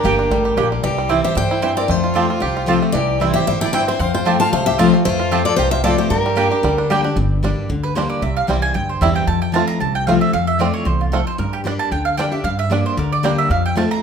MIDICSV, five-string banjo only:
0, 0, Header, 1, 2, 480
1, 0, Start_track
1, 0, Tempo, 263852
1, 1521, Time_signature, 4, 2, 24, 8
1, 25514, End_track
2, 0, Start_track
2, 0, Title_t, "Five-string banjo"
2, 0, Program_c, 0, 105
2, 0, Note_on_c, 0, 55, 62
2, 0, Note_on_c, 0, 62, 66
2, 84, Note_on_c, 0, 67, 57
2, 324, Note_off_c, 0, 62, 0
2, 345, Note_on_c, 0, 62, 59
2, 565, Note_off_c, 0, 55, 0
2, 572, Note_on_c, 0, 55, 71
2, 769, Note_off_c, 0, 67, 0
2, 820, Note_on_c, 0, 67, 59
2, 1000, Note_off_c, 0, 62, 0
2, 1045, Note_on_c, 0, 62, 60
2, 1253, Note_off_c, 0, 55, 0
2, 1311, Note_on_c, 0, 55, 63
2, 1477, Note_off_c, 0, 67, 0
2, 1522, Note_on_c, 0, 52, 65
2, 1523, Note_off_c, 0, 62, 0
2, 1528, Note_off_c, 0, 55, 0
2, 1789, Note_on_c, 0, 55, 60
2, 2012, Note_on_c, 0, 64, 55
2, 2207, Note_off_c, 0, 52, 0
2, 2269, Note_on_c, 0, 67, 68
2, 2442, Note_off_c, 0, 55, 0
2, 2488, Note_on_c, 0, 55, 72
2, 2692, Note_off_c, 0, 64, 0
2, 2748, Note_on_c, 0, 64, 63
2, 2922, Note_off_c, 0, 67, 0
2, 2974, Note_on_c, 0, 52, 59
2, 3170, Note_off_c, 0, 55, 0
2, 3224, Note_on_c, 0, 60, 64
2, 3401, Note_off_c, 0, 64, 0
2, 3446, Note_on_c, 0, 57, 78
2, 3447, Note_off_c, 0, 52, 0
2, 3706, Note_on_c, 0, 65, 65
2, 3928, Note_on_c, 0, 67, 58
2, 4129, Note_off_c, 0, 57, 0
2, 4164, Note_off_c, 0, 65, 0
2, 4186, Note_on_c, 0, 65, 61
2, 4376, Note_off_c, 0, 67, 0
2, 4398, Note_on_c, 0, 67, 76
2, 4648, Note_off_c, 0, 65, 0
2, 4670, Note_on_c, 0, 65, 57
2, 4860, Note_off_c, 0, 67, 0
2, 4881, Note_on_c, 0, 67, 58
2, 5138, Note_on_c, 0, 57, 60
2, 5322, Note_off_c, 0, 65, 0
2, 5355, Note_on_c, 0, 52, 66
2, 5360, Note_off_c, 0, 57, 0
2, 5361, Note_off_c, 0, 67, 0
2, 5771, Note_off_c, 0, 60, 0
2, 5848, Note_on_c, 0, 64, 53
2, 6043, Note_off_c, 0, 52, 0
2, 6104, Note_on_c, 0, 67, 60
2, 6319, Note_on_c, 0, 55, 76
2, 6529, Note_off_c, 0, 64, 0
2, 6584, Note_on_c, 0, 64, 55
2, 6758, Note_off_c, 0, 67, 0
2, 6804, Note_on_c, 0, 52, 63
2, 7005, Note_off_c, 0, 55, 0
2, 7060, Note_on_c, 0, 60, 63
2, 7238, Note_off_c, 0, 64, 0
2, 7275, Note_off_c, 0, 60, 0
2, 7281, Note_off_c, 0, 52, 0
2, 7282, Note_on_c, 0, 60, 70
2, 7545, Note_on_c, 0, 65, 62
2, 7770, Note_on_c, 0, 67, 58
2, 7966, Note_off_c, 0, 60, 0
2, 8003, Note_off_c, 0, 65, 0
2, 8025, Note_on_c, 0, 65, 68
2, 8254, Note_on_c, 0, 57, 75
2, 8450, Note_off_c, 0, 67, 0
2, 8499, Note_on_c, 0, 67, 60
2, 8678, Note_off_c, 0, 65, 0
2, 8723, Note_on_c, 0, 65, 59
2, 8932, Note_off_c, 0, 57, 0
2, 8978, Note_on_c, 0, 57, 63
2, 9155, Note_off_c, 0, 67, 0
2, 9171, Note_off_c, 0, 57, 0
2, 9193, Note_on_c, 0, 57, 78
2, 9406, Note_off_c, 0, 65, 0
2, 9451, Note_on_c, 0, 65, 67
2, 9680, Note_on_c, 0, 67, 62
2, 9880, Note_off_c, 0, 57, 0
2, 9913, Note_off_c, 0, 65, 0
2, 9934, Note_on_c, 0, 65, 61
2, 10141, Note_off_c, 0, 67, 0
2, 10163, Note_on_c, 0, 67, 79
2, 10399, Note_off_c, 0, 65, 0
2, 10420, Note_on_c, 0, 65, 63
2, 10627, Note_off_c, 0, 67, 0
2, 10649, Note_on_c, 0, 67, 59
2, 10894, Note_on_c, 0, 57, 62
2, 11075, Note_off_c, 0, 65, 0
2, 11116, Note_off_c, 0, 57, 0
2, 11123, Note_off_c, 0, 67, 0
2, 11132, Note_on_c, 0, 50, 65
2, 11385, Note_on_c, 0, 55, 68
2, 11597, Note_on_c, 0, 62, 59
2, 11810, Note_off_c, 0, 50, 0
2, 11852, Note_on_c, 0, 67, 64
2, 12037, Note_off_c, 0, 55, 0
2, 12088, Note_on_c, 0, 55, 80
2, 12282, Note_off_c, 0, 62, 0
2, 12340, Note_on_c, 0, 62, 63
2, 12511, Note_off_c, 0, 67, 0
2, 12557, Note_on_c, 0, 50, 56
2, 12768, Note_off_c, 0, 55, 0
2, 12793, Note_off_c, 0, 62, 0
2, 12815, Note_on_c, 0, 62, 61
2, 13036, Note_off_c, 0, 50, 0
2, 13037, Note_off_c, 0, 62, 0
2, 13537, Note_on_c, 0, 55, 63
2, 13542, Note_on_c, 0, 62, 59
2, 13548, Note_off_c, 0, 62, 0
2, 13548, Note_on_c, 0, 62, 63
2, 13640, Note_off_c, 0, 55, 0
2, 13645, Note_off_c, 0, 62, 0
2, 14501, Note_on_c, 0, 55, 63
2, 14512, Note_on_c, 0, 62, 71
2, 14518, Note_off_c, 0, 62, 0
2, 14518, Note_on_c, 0, 62, 71
2, 14604, Note_off_c, 0, 55, 0
2, 14610, Note_off_c, 0, 62, 0
2, 15456, Note_on_c, 0, 55, 64
2, 15466, Note_on_c, 0, 60, 64
2, 15472, Note_on_c, 0, 64, 62
2, 15561, Note_off_c, 0, 55, 0
2, 15563, Note_off_c, 0, 60, 0
2, 15568, Note_off_c, 0, 64, 0
2, 16414, Note_on_c, 0, 55, 68
2, 16426, Note_on_c, 0, 60, 68
2, 16428, Note_on_c, 0, 64, 65
2, 16519, Note_off_c, 0, 55, 0
2, 16525, Note_off_c, 0, 60, 0
2, 16525, Note_off_c, 0, 64, 0
2, 17381, Note_on_c, 0, 57, 67
2, 17388, Note_on_c, 0, 60, 65
2, 17392, Note_on_c, 0, 65, 68
2, 17483, Note_off_c, 0, 57, 0
2, 17484, Note_off_c, 0, 60, 0
2, 17489, Note_off_c, 0, 65, 0
2, 18345, Note_on_c, 0, 57, 73
2, 18358, Note_on_c, 0, 60, 70
2, 18359, Note_on_c, 0, 65, 65
2, 18447, Note_off_c, 0, 57, 0
2, 18449, Note_off_c, 0, 60, 0
2, 18452, Note_off_c, 0, 65, 0
2, 19295, Note_on_c, 0, 57, 66
2, 19305, Note_on_c, 0, 60, 67
2, 19310, Note_on_c, 0, 65, 62
2, 19401, Note_off_c, 0, 57, 0
2, 19404, Note_off_c, 0, 60, 0
2, 19408, Note_off_c, 0, 65, 0
2, 20254, Note_on_c, 0, 57, 66
2, 20264, Note_on_c, 0, 60, 70
2, 20271, Note_on_c, 0, 65, 69
2, 20360, Note_off_c, 0, 57, 0
2, 20365, Note_off_c, 0, 60, 0
2, 20369, Note_off_c, 0, 65, 0
2, 21222, Note_on_c, 0, 55, 67
2, 21232, Note_on_c, 0, 62, 68
2, 21233, Note_off_c, 0, 62, 0
2, 21233, Note_on_c, 0, 62, 68
2, 21270, Note_off_c, 0, 62, 0
2, 21326, Note_off_c, 0, 55, 0
2, 22182, Note_on_c, 0, 55, 69
2, 22189, Note_on_c, 0, 62, 66
2, 22200, Note_off_c, 0, 62, 0
2, 22200, Note_on_c, 0, 62, 63
2, 22285, Note_off_c, 0, 55, 0
2, 22290, Note_off_c, 0, 62, 0
2, 23138, Note_on_c, 0, 55, 63
2, 23147, Note_on_c, 0, 62, 64
2, 23157, Note_off_c, 0, 62, 0
2, 23157, Note_on_c, 0, 62, 63
2, 23243, Note_off_c, 0, 55, 0
2, 23252, Note_off_c, 0, 62, 0
2, 24099, Note_on_c, 0, 55, 70
2, 24109, Note_on_c, 0, 62, 69
2, 24114, Note_off_c, 0, 62, 0
2, 24114, Note_on_c, 0, 62, 66
2, 24205, Note_off_c, 0, 55, 0
2, 24211, Note_off_c, 0, 62, 0
2, 25059, Note_on_c, 0, 57, 68
2, 25070, Note_on_c, 0, 65, 65
2, 25072, Note_on_c, 0, 60, 69
2, 25165, Note_off_c, 0, 57, 0
2, 25168, Note_off_c, 0, 60, 0
2, 25169, Note_off_c, 0, 65, 0
2, 25514, End_track
0, 0, End_of_file